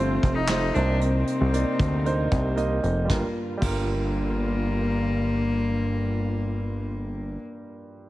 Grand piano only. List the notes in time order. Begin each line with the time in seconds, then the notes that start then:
Already playing: A3 F4 C5
0.48 A3 F4 C5
0.74 C3 A#3 D#4 C5
1.52 A#3 D#4 D5
2.04 A#3 D#4 C5
2.56 A#3 D#4 D#5
3.05 G2 G3 F4
3.13 A#4
3.57 G2 G3 F4
3.65 A#4